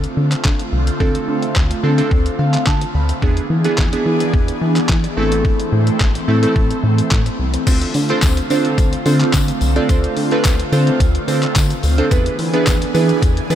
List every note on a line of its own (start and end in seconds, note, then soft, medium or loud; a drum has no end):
0.00 3.18 D3 medium
0.00 3.18 A3 medium
0.00 3.19 C4 medium
0.00 3.19 F4 medium
0.00 closed hi-hat soft
0.17 0.35 D3 medium
0.32 clap medium
0.32 closed hi-hat medium
0.45 0.63 D3 loud
0.45 kick loud
0.45 snare medium
0.45 clap loud
0.59 closed hi-hat medium
0.72 0.91 C2 medium
0.87 closed hi-hat medium
1.00 1.18 D2 loud
1.00 1.45 C4 medium
1.00 1.46 D4 medium
1.00 1.46 F4 medium
1.00 1.46 A4 loud
1.00 kick loud
1.15 closed hi-hat soft
1.28 1.46 D3 loud
1.42 closed hi-hat medium
1.56 1.74 D2 loud
1.56 kick loud
1.56 snare loud
1.56 clap loud
1.71 closed hi-hat medium
1.83 2.02 D3 loud
1.83 1.91 C4 medium
1.83 1.91 D4 medium
1.83 1.91 F4 medium
1.83 1.92 A4 medium
1.98 2.57 C4 medium
1.98 2.57 D4 medium
1.98 2.58 F4 medium
1.98 2.58 A4 medium
1.98 closed hi-hat medium
2.11 2.29 D2 loud
2.11 kick loud
2.26 closed hi-hat soft
2.39 2.57 D3 loud
2.39 2.65 F5 medium
2.54 clap medium
2.54 closed hi-hat medium
2.67 2.85 D3 loud
2.67 2.93 A5 medium
2.67 kick loud
2.67 snare medium
2.67 clap loud
2.81 closed hi-hat medium
2.95 3.13 D2 loud
2.95 3.21 B5 medium
3.09 closed hi-hat medium
3.22 3.40 E2 loud
3.22 7.63 E3 medium
3.22 5.15 B3 medium
3.22 3.45 B3 medium
3.22 5.15 D4 medium
3.22 3.45 D4 medium
3.22 3.45 E4 medium
3.22 5.15 G#4 medium
3.22 3.45 G#4 medium
3.22 kick loud
3.37 closed hi-hat soft
3.50 3.68 E3 medium
3.64 3.79 B3 medium
3.64 3.79 D4 medium
3.64 3.79 E4 medium
3.64 3.79 G#4 loud
3.64 closed hi-hat medium
3.78 3.96 E2 loud
3.78 kick loud
3.78 snare loud
3.78 clap loud
3.93 4.52 B3 medium
3.93 4.52 D4 medium
3.93 4.52 E4 medium
3.93 4.52 G#4 medium
3.93 closed hi-hat medium
4.06 4.24 E3 medium
4.20 closed hi-hat medium
4.34 4.52 E2 loud
4.34 kick loud
4.48 closed hi-hat soft
4.61 4.79 E3 medium
4.76 clap medium
4.76 closed hi-hat medium
4.89 5.07 E3 loud
4.89 kick loud
4.89 snare loud
4.89 clap loud
5.04 closed hi-hat medium
5.17 5.53 A1 medium
5.17 6.06 A3 medium
5.17 7.65 A3 medium
5.17 6.06 C4 medium
5.17 7.65 C4 loud
5.17 6.06 E4 medium
5.17 6.06 A4 loud
5.32 closed hi-hat medium
5.45 kick loud
5.60 closed hi-hat medium
5.72 5.91 A2 loud
5.87 closed hi-hat medium
6.00 6.19 A1 loud
6.00 kick loud
6.00 snare loud
6.00 clap loud
6.15 closed hi-hat soft
6.28 6.46 A2 loud
6.28 6.36 A3 medium
6.28 6.36 C4 medium
6.28 6.36 E4 medium
6.28 6.36 A4 medium
6.43 7.02 A3 medium
6.43 7.02 C4 medium
6.43 7.02 E4 medium
6.43 7.02 A4 medium
6.43 closed hi-hat medium
6.56 6.74 A1 loud
6.56 kick loud
6.71 closed hi-hat soft
6.84 7.02 A2 medium
6.98 closed hi-hat medium
7.11 7.30 A2 loud
7.11 kick loud
7.11 snare medium
7.11 clap loud
7.26 closed hi-hat medium
7.39 7.57 C2 medium
7.54 closed hi-hat medium
7.67 7.85 D2 loud
7.67 12.08 D3 medium
7.67 12.08 A3 medium
7.67 7.90 C4 medium
7.67 12.08 C4 medium
7.67 7.90 D4 medium
7.67 7.90 F4 medium
7.67 12.08 F4 medium
7.67 7.90 A4 medium
7.67 7.90 C5 loud
7.67 kick loud
7.67 closed hi-hat medium
7.67 crash loud
7.67 tambourine medium
7.81 closed hi-hat medium
7.94 8.13 D3 loud
7.94 open hi-hat medium
7.94 tambourine soft
8.09 8.32 C4 medium
8.09 8.32 D4 medium
8.09 8.32 F4 medium
8.09 8.32 A4 medium
8.09 8.32 C5 loud
8.09 closed hi-hat soft
8.22 8.41 D2 loud
8.22 kick loud
8.22 snare loud
8.22 clap loud
8.22 closed hi-hat medium
8.22 tambourine medium
8.37 closed hi-hat medium
8.50 8.68 D3 loud
8.50 8.80 C4 medium
8.50 8.80 D4 medium
8.50 8.80 F4 medium
8.50 8.80 A4 medium
8.50 8.80 C5 medium
8.50 open hi-hat medium
8.50 tambourine soft
8.65 closed hi-hat medium
8.78 8.96 D2 loud
8.78 kick loud
8.78 closed hi-hat medium
8.78 tambourine soft
8.93 closed hi-hat soft
9.06 9.24 D3 loud
9.06 9.44 C4 medium
9.06 9.44 D4 medium
9.06 9.44 F4 medium
9.06 9.44 A4 medium
9.06 9.44 C5 medium
9.06 open hi-hat medium
9.06 tambourine soft
9.20 clap medium
9.20 closed hi-hat medium
9.33 9.52 D3 loud
9.33 kick loud
9.33 snare loud
9.33 clap loud
9.33 closed hi-hat medium
9.33 tambourine medium
9.48 closed hi-hat medium
9.61 9.79 C2 medium
9.61 open hi-hat medium
9.61 tambourine medium
9.76 9.83 C4 medium
9.76 9.83 D4 medium
9.76 9.83 F4 medium
9.76 9.83 A4 medium
9.76 9.83 D5 loud
9.76 closed hi-hat soft
9.89 10.07 D2 loud
9.89 10.12 C4 medium
9.89 10.12 D4 medium
9.89 10.12 F4 medium
9.89 10.12 A4 medium
9.89 10.12 C5 loud
9.89 kick loud
9.89 closed hi-hat medium
9.89 tambourine medium
10.04 closed hi-hat medium
10.17 10.35 D3 loud
10.17 open hi-hat medium
10.31 10.54 C4 medium
10.31 10.54 D4 medium
10.31 10.54 F4 medium
10.31 10.54 A4 medium
10.31 10.54 B4 loud
10.31 closed hi-hat soft
10.45 10.63 D2 loud
10.45 kick loud
10.45 snare loud
10.45 clap loud
10.45 closed hi-hat medium
10.45 tambourine medium
10.60 closed hi-hat medium
10.72 10.90 D3 loud
10.72 11.02 C4 medium
10.72 11.02 D4 medium
10.72 11.02 F4 medium
10.72 11.02 A4 medium
10.72 11.03 C5 medium
10.72 open hi-hat medium
10.72 tambourine medium
10.87 closed hi-hat medium
11.00 11.18 D2 loud
11.00 kick loud
11.00 closed hi-hat medium
11.00 tambourine soft
11.15 closed hi-hat medium
11.28 11.46 D3 loud
11.28 11.66 C4 medium
11.28 11.66 D4 medium
11.28 11.66 F4 medium
11.28 11.66 A4 medium
11.28 11.66 C5 medium
11.28 open hi-hat medium
11.28 tambourine medium
11.43 clap medium
11.43 closed hi-hat medium
11.56 11.74 D3 loud
11.56 kick loud
11.56 snare loud
11.56 clap loud
11.56 closed hi-hat medium
11.56 tambourine medium
11.70 closed hi-hat medium
11.83 12.02 D2 loud
11.83 open hi-hat medium
11.83 tambourine medium
11.98 12.05 C4 medium
11.98 12.05 D4 medium
11.98 12.05 F4 medium
11.98 12.05 A4 medium
11.98 12.05 C5 loud
11.98 closed hi-hat medium
12.11 12.29 E2 loud
12.11 13.55 E3 medium
12.11 12.34 B3 medium
12.11 13.55 B3 medium
12.11 12.34 D4 medium
12.11 13.55 D4 medium
12.11 12.34 E4 medium
12.11 13.55 G#4 medium
12.11 12.34 G#4 medium
12.11 12.34 B4 loud
12.11 kick loud
12.11 closed hi-hat medium
12.11 tambourine medium
12.26 closed hi-hat medium
12.39 12.57 E3 loud
12.39 open hi-hat medium
12.53 12.76 B3 medium
12.53 12.76 D4 medium
12.53 12.76 E4 medium
12.53 12.76 G#4 medium
12.53 12.76 B4 loud
12.53 closed hi-hat soft
12.67 12.85 E2 loud
12.67 kick loud
12.67 snare loud
12.67 clap loud
12.67 closed hi-hat medium
12.67 tambourine medium
12.82 closed hi-hat medium
12.94 13.13 E3 loud
12.94 13.24 B3 medium
12.94 13.24 D4 medium
12.94 13.25 E4 medium
12.94 13.25 G#4 medium
12.94 13.25 B4 medium
12.94 open hi-hat medium
12.94 tambourine medium
13.09 closed hi-hat medium
13.22 13.41 E2 loud
13.22 kick loud
13.22 closed hi-hat medium
13.22 tambourine soft
13.37 closed hi-hat medium
13.50 13.55 E3 loud
13.50 13.55 B3 medium
13.50 13.55 D4 medium
13.50 13.55 E4 medium
13.50 13.55 G#4 medium
13.50 13.55 B4 medium
13.50 open hi-hat medium
13.50 tambourine soft